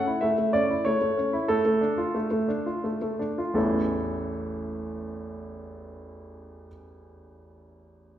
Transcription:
0.00 0.22 F#5 medium
0.07 0.23 E4 soft
0.21 0.37 A3 soft
0.21 0.50 E5 medium
0.38 0.55 A3 soft
0.53 0.70 C#4 soft
0.53 0.85 D5 medium
0.70 0.87 E4 soft
0.85 1.00 A3 soft
0.85 1.49 C#5 medium
1.01 1.18 A3 soft
1.17 1.34 C#4 soft
1.33 1.49 E4 soft
1.48 1.64 A3 medium
1.48 3.20 A4 medium
1.65 1.83 A3 soft
1.81 1.99 D4 soft
1.98 2.16 F4 soft
2.15 2.29 A3 soft
2.31 2.50 A3 soft
2.48 2.67 D4 soft
2.66 2.85 F4 soft
2.84 3.00 A3 soft
3.02 3.21 A3 soft
3.19 3.39 D4 soft
3.38 3.56 F4 soft
3.54 6.66 A1 soft
3.54 6.67 E2 soft
3.54 6.67 E3 soft
3.54 6.67 A3 soft
3.54 6.68 C#4 soft
3.54 6.68 E4 soft
3.54 6.67 A4 soft

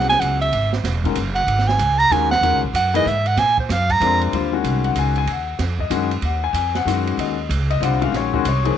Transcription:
0.00 0.20 C2 medium
0.00 0.46 F#3 medium
0.00 0.46 B3 medium
0.00 0.46 C#4 medium
0.00 0.46 E4 medium
0.00 0.46 G#4 medium
0.00 snare soft
0.09 0.21 G#5 loud
0.09 snare soft
0.09 ride soft
0.20 0.51 C#2 medium
0.20 0.40 F#5 medium
0.20 hi-hat pedal medium
0.20 ride medium
0.41 0.70 E5 medium
0.41 ride soft
0.52 0.83 G#1 medium
0.52 ride medium
0.73 snare medium
0.84 1.15 E1 medium
0.84 snare soft
0.84 hi-hat pedal medium
0.84 ride medium
1.04 1.15 D#3 medium
1.04 1.15 G#3 medium
1.04 1.15 C#4 medium
1.04 1.16 F#4 medium
1.04 1.16 A#4 medium
1.04 kick medium
1.04 ride soft
1.15 1.46 F#1 medium
1.15 hi-hat pedal medium
1.15 ride medium
1.35 1.69 F#5 loud
1.35 ride soft
1.47 1.78 G#1 medium
1.47 ride medium
1.59 snare soft
1.67 2.00 G#5 loud
1.67 snare soft
1.78 2.09 C#2 loud
1.78 hi-hat pedal medium
1.78 ride medium
1.99 2.13 A#5 loud
1.99 ride soft
2.10 2.41 D#2 loud
2.10 2.29 D#3 medium
2.10 2.29 G#3 medium
2.10 2.29 C#4 medium
2.10 2.29 F#4 medium
2.10 2.29 A#4 medium
2.10 2.31 G#5 medium
2.10 ride medium
2.31 2.60 F#5 loud
2.31 snare soft
2.41 2.52 E2 medium
2.41 2.61 D#3 medium
2.41 2.61 G#3 medium
2.41 2.61 C#4 medium
2.41 2.61 F#4 medium
2.41 2.61 A#4 medium
2.41 ride medium
2.52 2.63 C#2 medium
2.63 2.73 A#1 medium
2.73 3.04 F#2 loud
2.73 2.94 F#5 medium
2.73 hi-hat pedal medium
2.73 ride medium
2.94 3.05 E3 medium
2.94 3.05 A#3 medium
2.94 3.05 D#4 medium
2.94 3.05 G#4 medium
2.94 3.05 B4 medium
2.94 3.10 D#5 loud
2.94 ride medium
3.06 3.36 G#2 loud
3.06 3.29 E5 medium
3.06 hi-hat pedal medium
3.26 3.41 F#5 loud
3.26 ride soft
3.37 3.68 A#2 medium
3.37 3.58 G#5 loud
3.37 snare soft
3.37 ride medium
3.58 3.73 C5 medium
3.58 kick medium
3.69 4.00 F#2 loud
3.69 3.93 F5 medium
3.69 snare soft
3.69 hi-hat pedal medium
3.69 ride medium
3.89 4.22 A#5 loud
3.89 kick medium
3.89 ride soft
4.00 4.31 F2 loud
4.00 4.32 G#3 medium
4.00 4.33 C4 medium
4.00 4.33 D4 medium
4.00 4.33 F4 medium
4.00 4.33 A#4 medium
4.00 hi-hat pedal medium
4.00 ride medium
4.21 ride soft
4.32 4.63 D#2 medium
4.32 4.51 D3 medium
4.32 4.51 G3 medium
4.32 4.51 C4 medium
4.32 4.51 F4 medium
4.32 ride medium
4.53 5.21 D#3 medium
4.53 5.21 G#3 medium
4.53 5.21 C#4 medium
4.53 5.21 F#4 medium
4.64 4.95 C2 medium
4.64 hi-hat pedal medium
4.64 ride medium
4.84 4.96 F#5 medium
4.84 ride soft
4.95 5.25 C#2 medium
4.95 5.16 G#5 medium
4.95 hi-hat pedal medium
4.95 ride medium
5.16 5.28 G#5 medium
5.16 ride soft
5.26 5.58 D#2 medium
5.26 ride medium
5.31 5.78 F#5 medium
5.59 5.90 F2 medium
5.59 snare soft
5.59 ride medium
5.79 6.09 D#5 medium
5.79 kick soft
5.90 6.21 F#2 medium
5.90 6.09 D#3 medium
5.90 6.09 G#3 medium
5.90 6.09 C#4 medium
5.90 6.09 F#4 medium
5.90 hi-hat pedal medium
5.90 ride medium
6.11 ride soft
6.22 6.52 D#2 medium
6.22 6.43 F#5 medium
6.22 ride medium
6.44 6.54 G#5 medium
6.53 6.85 F2 medium
6.53 6.74 G#5 medium
6.53 hi-hat pedal medium
6.53 ride medium
6.75 7.16 F#5 loud
6.75 snare soft
6.75 ride soft
6.85 7.17 F#2 medium
6.85 7.34 D#3 medium
6.85 7.34 G#3 medium
6.85 7.35 C#4 medium
6.85 7.35 F#4 medium
6.85 hi-hat pedal medium
6.85 ride medium
7.07 ride soft
7.17 7.48 D#2 medium
7.17 7.49 D#5 medium
7.17 ride medium
7.49 7.80 C#2 medium
7.49 hi-hat pedal medium
7.49 ride medium
7.70 7.82 D#5 medium
7.70 ride soft
7.80 8.11 C2 medium
7.80 7.99 D3 medium
7.80 8.00 G3 medium
7.80 8.00 C4 medium
7.80 8.00 F4 medium
7.80 8.02 F#5 medium
7.80 hi-hat pedal soft
7.80 ride medium
8.01 8.29 D#3 medium
8.01 8.29 G#3 medium
8.01 8.29 C#4 medium
8.01 8.29 F#4 medium
8.01 8.14 F5 medium
8.01 ride soft
8.12 8.43 A#1 medium
8.12 snare soft
8.12 ride medium
8.17 8.45 C#5 medium
8.33 8.44 D#3 medium
8.33 8.44 G#3 medium
8.33 8.44 C#4 medium
8.33 8.44 F#4 medium
8.33 kick medium
8.44 8.75 C2 medium
8.44 hi-hat pedal medium
8.44 ride medium
8.49 8.77 C#5 medium
8.64 8.75 F3 medium
8.64 8.76 A#3 medium
8.64 8.76 D#4 medium
8.64 8.76 G#4 medium
8.64 ride soft

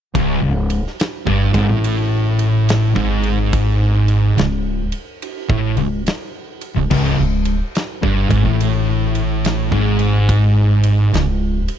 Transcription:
0.15 0.40 C#1 medium
0.15 0.41 C#2 loud
0.15 kick loud
0.15 ride loud
0.41 0.81 C#1 medium
0.41 0.78 C#2 medium
0.70 ride medium
0.87 snare soft
1.00 snare loud
1.00 ride loud
1.27 1.52 G1 medium
1.27 1.53 G2 medium
1.27 kick loud
1.54 1.68 G#1 loud
1.54 1.68 G#2 loud
1.54 kick loud
1.54 ride medium
1.69 2.92 A1 loud
1.69 2.94 A2 loud
1.84 ride loud
2.39 ride medium
2.69 snare loud
2.69 ride loud
2.95 4.34 G#1 loud
2.95 4.36 G#2 loud
2.95 kick loud
3.23 ride medium
3.53 kick loud
3.53 ride loud
4.08 ride medium
4.38 4.89 C#1 medium
4.38 4.81 C#2 medium
4.38 snare loud
4.38 ride loud
4.92 ride medium
5.22 ride loud
5.50 5.75 A1 medium
5.50 5.75 A2 loud
5.50 kick loud
5.76 6.04 C#1 medium
5.76 6.01 C#2 medium
5.76 ride medium
6.06 snare loud
6.06 ride loud
6.61 ride medium
6.75 6.90 C#1 medium
6.75 6.89 C#2 medium
6.90 7.17 C#1 medium
6.90 7.17 C#2 loud
6.90 kick loud
6.90 crash loud
7.18 7.58 C#1 medium
7.18 7.55 C#2 medium
7.45 ride medium
7.75 snare loud
7.75 ride medium
8.03 8.29 G1 medium
8.03 8.29 G2 loud
8.03 kick loud
8.30 8.44 G#1 loud
8.30 8.45 G#2 loud
8.30 kick loud
8.30 ride medium
8.45 9.68 A1 loud
8.45 9.71 A2 loud
8.60 ride loud
9.15 ride medium
9.45 snare loud
9.45 ride loud
9.71 11.10 G#1 loud
9.71 11.13 G#2 loud
9.71 kick loud
9.99 ride medium
10.29 kick loud
10.29 ride loud
10.83 ride medium
11.13 11.65 C#1 medium
11.13 11.57 C#2 medium
11.13 snare loud
11.13 ride loud
11.68 ride medium

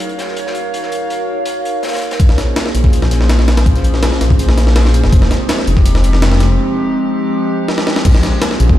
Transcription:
0.00 2.18 D#4 medium
0.00 2.18 F#4 medium
0.00 2.18 A#4 medium
0.00 2.18 C#5 medium
0.00 2.18 F5 loud
0.00 closed hi-hat medium
0.09 closed hi-hat soft
0.19 snare medium
0.19 closed hi-hat medium
0.28 snare soft
0.37 closed hi-hat medium
0.47 snare medium
0.55 closed hi-hat medium
0.74 closed hi-hat medium
0.83 snare soft
0.92 closed hi-hat medium
1.10 closed hi-hat medium
1.46 closed hi-hat medium
1.65 closed hi-hat medium
1.83 snare medium
1.83 closed hi-hat medium
1.87 snare medium
1.87 closed hi-hat medium
1.93 snare medium
1.93 closed hi-hat medium
1.96 snare medium
1.96 closed hi-hat medium
2.01 closed hi-hat medium
2.11 snare loud
2.11 closed hi-hat medium
2.19 2.36 A#1 medium
2.19 kick loud
2.19 closed hi-hat medium
2.29 snare medium
2.38 snare soft
2.38 closed hi-hat medium
2.56 snare loud
2.56 closed hi-hat medium
2.66 snare soft
2.75 4.11 A#1 medium
2.75 3.64 A#3 medium
2.75 3.64 C#4 medium
2.75 3.64 F4 medium
2.75 3.64 G#4 medium
2.75 3.64 C5 loud
2.75 closed hi-hat medium
2.84 kick medium
2.84 snare soft
2.93 closed hi-hat medium
3.02 snare soft
3.02 closed hi-hat soft
3.11 snare soft
3.11 closed hi-hat medium
3.21 snare soft
3.29 snare loud
3.29 closed hi-hat medium
3.39 snare medium
3.48 snare medium
3.48 closed hi-hat medium
3.57 snare loud
3.57 closed hi-hat medium
3.66 kick loud
3.66 closed hi-hat medium
3.76 snare soft
3.76 closed hi-hat soft
3.84 closed hi-hat medium
3.94 snare soft
4.02 snare loud
4.02 closed hi-hat medium
4.12 snare soft
4.21 5.02 A#1 medium
4.21 5.10 A#3 medium
4.21 5.10 C#4 medium
4.21 5.10 F4 medium
4.21 5.10 G#4 medium
4.21 5.10 C5 medium
4.21 snare soft
4.21 closed hi-hat medium
4.30 kick medium
4.30 closed hi-hat soft
4.39 closed hi-hat medium
4.49 snare medium
4.58 snare medium
4.58 closed hi-hat medium
4.67 snare soft
4.76 snare loud
4.76 closed hi-hat medium
4.76 open hi-hat medium
4.85 snare soft
4.85 snare medium
4.94 closed hi-hat medium
5.04 5.12 F1 medium
5.04 snare soft
5.12 5.29 F1 loud
5.12 kick loud
5.12 closed hi-hat medium
5.22 snare medium
5.31 snare medium
5.31 closed hi-hat medium
5.49 snare loud
5.49 closed hi-hat medium
5.59 snare medium
5.59 snare soft
5.67 6.59 F1 medium
5.67 6.57 F3 loud
5.67 6.57 G#3 medium
5.67 6.57 C4 medium
5.67 6.57 D#4 medium
5.67 6.57 G4 loud
5.67 closed hi-hat medium
5.76 kick medium
5.76 snare soft
5.86 closed hi-hat medium
5.95 snare medium
5.95 closed hi-hat soft
6.04 closed hi-hat medium
6.13 snare soft
6.13 closed hi-hat soft
6.22 snare loud
6.22 snare soft
6.22 closed hi-hat medium
6.32 snare medium
6.32 snare soft
6.40 snare soft
6.40 closed hi-hat medium
7.68 snare medium
7.78 snare medium
7.87 snare medium
7.96 snare medium
8.05 8.22 A#1 loud
8.05 kick loud
8.05 closed hi-hat medium
8.05 crash medium
8.15 snare medium
8.23 snare medium
8.23 closed hi-hat medium
8.42 snare loud
8.42 closed hi-hat medium
8.51 snare medium
8.60 8.79 A#1 medium
8.60 8.79 A#3 loud
8.60 8.79 C#4 medium
8.60 8.79 F4 medium
8.60 8.79 G#4 medium
8.60 8.79 C5 loud
8.60 closed hi-hat medium
8.69 kick medium

